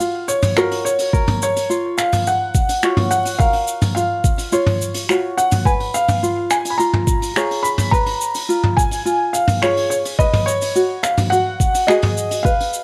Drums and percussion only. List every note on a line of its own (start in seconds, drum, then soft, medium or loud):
0.00 shaker medium
0.29 shaker loud
0.43 mid tom medium
0.43 open hi-hat medium
0.43 shaker medium
0.57 finger snap medium
0.57 shaker soft
0.71 open hi-hat medium
0.86 shaker medium
0.99 open hi-hat medium
0.99 shaker medium
1.13 kick loud
1.13 shaker soft
1.27 mid tom medium
1.27 open hi-hat medium
1.42 shaker medium
1.56 open hi-hat medium
1.56 shaker medium
1.71 shaker medium
1.98 finger snap medium
1.98 shaker medium
2.12 mid tom medium
2.12 open hi-hat medium
2.12 shaker medium
2.27 shaker medium
2.55 kick loud
2.55 shaker medium
2.69 open hi-hat medium
2.69 shaker medium
2.83 finger snap medium
2.83 shaker soft
2.97 mid tom medium
2.97 open hi-hat medium
3.11 shaker medium
3.25 open hi-hat medium
3.25 shaker medium
3.40 kick loud
3.40 shaker soft
3.53 open hi-hat medium
3.68 shaker medium
3.82 mid tom medium
3.82 open hi-hat medium
3.82 shaker medium
3.97 shaker medium
4.24 kick loud
4.24 shaker medium
4.38 open hi-hat medium
4.38 shaker medium
4.52 shaker soft
4.66 mid tom medium
4.66 open hi-hat soft
4.82 shaker medium
4.94 open hi-hat medium
4.94 shaker medium
5.09 finger snap medium
5.09 shaker soft
5.38 shaker medium
5.51 mid tom medium
5.51 open hi-hat medium
5.51 shaker medium
5.65 kick loud
5.65 shaker soft
5.80 open hi-hat soft
5.95 shaker medium
6.08 mid tom medium
6.08 open hi-hat medium
6.08 shaker medium
6.24 shaker soft
6.51 finger snap medium
6.51 shaker medium
6.65 open hi-hat medium
6.65 shaker medium
6.80 shaker soft
6.93 mid tom medium
7.07 kick loud
7.07 shaker medium
7.22 open hi-hat medium
7.22 shaker medium
7.36 finger snap medium
7.36 shaker soft
7.51 open hi-hat medium
7.65 shaker medium
7.78 mid tom medium
7.78 open hi-hat medium
7.78 shaker medium
7.92 kick loud
7.92 shaker soft
8.06 open hi-hat medium
8.21 shaker medium
8.35 open hi-hat medium
8.35 shaker medium
8.50 shaker soft
8.63 mid tom medium
8.77 kick medium
8.77 shaker medium
8.91 open hi-hat medium
8.91 shaker medium
9.06 shaker soft
9.34 shaker medium
9.48 mid tom medium
9.48 open hi-hat medium
9.48 shaker medium
9.63 finger snap medium
9.63 shaker soft
9.77 open hi-hat medium
9.91 shaker medium
10.05 open hi-hat medium
10.05 shaker medium
10.19 kick loud
10.19 shaker soft
10.33 mid tom medium
10.33 open hi-hat medium
10.48 shaker medium
10.62 open hi-hat medium
10.62 shaker medium
10.76 shaker soft
11.04 finger snap medium
11.04 shaker medium
11.17 mid tom medium
11.17 open hi-hat medium
11.17 shaker soft
11.33 shaker soft
11.60 kick medium
11.60 shaker medium
11.74 open hi-hat medium
11.74 shaker medium
11.88 finger snap medium
11.88 shaker soft
12.02 mid tom medium
12.02 open hi-hat medium
12.18 shaker medium
12.31 open hi-hat medium
12.31 shaker soft
12.45 kick loud
12.45 shaker medium
12.60 open hi-hat medium
12.74 shaker medium